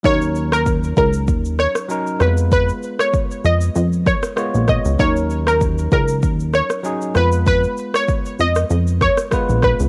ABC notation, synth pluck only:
X:1
M:4/4
L:1/16
Q:"Swing 16ths" 1/4=97
K:Ebm
V:1 name="Synth pluck"
d2 z B2 z B2 z2 d z3 c z | c2 z d2 z e2 z2 d z3 e z | d2 z B2 z B2 z2 d z3 c z | c2 z d2 z e2 z2 d z3 c z |]